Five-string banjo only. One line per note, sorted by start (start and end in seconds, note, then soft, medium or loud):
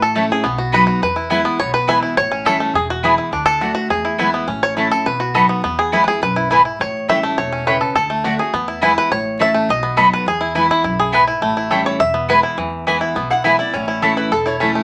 0.02 0.31 A4 loud
0.16 0.43 A3 medium
0.32 0.44 G#4 medium
0.44 0.84 B3 medium
0.58 0.86 F#4 medium
0.74 1.02 B4 medium
0.87 1.02 F#4 medium
1.03 1.30 B4 medium
1.16 1.29 E4 medium
1.30 1.71 E4 medium
1.45 1.86 B3 medium
1.60 1.73 C#5 loud
1.74 1.89 B4 loud
1.89 2.02 E5 loud
2.03 2.17 E4 medium
2.17 2.47 C#5 loud
2.31 2.72 C#4 medium
2.46 2.76 A4 medium
2.60 2.75 A3 medium
2.75 2.90 G#4 medium
2.90 3.03 F#4 medium
3.05 3.31 G#4 medium
3.18 3.32 E4 medium
3.33 3.73 D4 medium
3.46 3.76 A4 loud
3.61 3.73 F#4 medium
3.75 3.90 F#4 medium
3.90 4.17 G#4 medium
4.05 4.18 E4 medium
4.19 4.48 E4 medium
4.34 4.48 B3 medium
4.48 4.89 C#4 medium
4.63 4.76 C#5 loud
4.77 5.06 E4 medium
4.91 5.07 A4 medium
5.06 5.33 B4 medium
5.20 5.61 F#4 medium
5.35 5.64 A4 medium
5.49 5.63 B3 medium
5.64 6.04 B3 medium
5.79 6.05 G#4 medium
5.93 6.04 E4 medium
6.04 6.22 G#4 loud
6.04 6.07 B4 medium
6.23 6.49 B4 medium
6.36 6.49 E4 medium
6.51 6.64 E4 medium
6.65 6.80 E4 medium
6.81 7.09 C#5 loud
7.10 7.36 E5 loud
7.23 7.64 A3 medium
7.38 7.67 C#5 loud
7.52 7.93 C#4 medium
7.67 7.97 B4 medium
7.81 7.94 A4 medium
7.95 8.40 A4 medium
8.10 8.50 A3 medium
8.24 8.39 F#4 medium
8.39 8.53 G#4 medium
8.54 8.94 B3 medium
8.68 8.82 E4 medium
8.83 9.11 E4 medium
8.98 9.11 B4 loud
9.12 9.41 C#5 loud
9.41 9.70 E5 loud
9.54 9.69 A3 medium
9.70 10.13 D#5 loud
9.83 10.24 B3 medium
9.97 10.26 A4 medium
10.13 10.27 B4 loud
10.28 10.55 G#4 medium
10.41 10.55 E4 medium
10.55 10.71 E4 medium
10.71 10.83 E4 medium
10.84 11.27 E4 medium
10.99 11.14 G#4 medium
11.14 11.42 B4 medium
11.27 11.56 E4 medium
11.42 11.83 A3 medium
11.57 11.97 E4 medium
11.71 12.00 A4 medium
11.86 11.99 C#5 medium
12.00 12.29 E5 loud
12.14 12.55 B3 medium
12.30 12.43 B4 medium
12.43 12.58 E4 medium
12.58 12.87 E3 medium
12.87 14.27 E3 medium
13.01 13.30 E4 medium
13.16 13.57 B3 medium
13.30 13.44 E4 medium
13.44 13.59 E4 medium
13.59 13.87 E4 medium
13.74 14.15 C#4 medium
13.88 14.16 E4 medium
14.02 14.31 A4 medium
14.17 14.45 E4 medium
14.32 14.73 A4 medium
14.46 14.83 E4 medium
14.60 14.83 C#4 medium
14.75 14.83 A3 medium